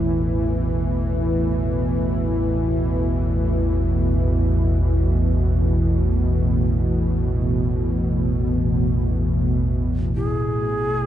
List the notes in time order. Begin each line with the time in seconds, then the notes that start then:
Already playing: A1 E2 A2 B2 E3
10.15 A1 E2 A2 E4 G#4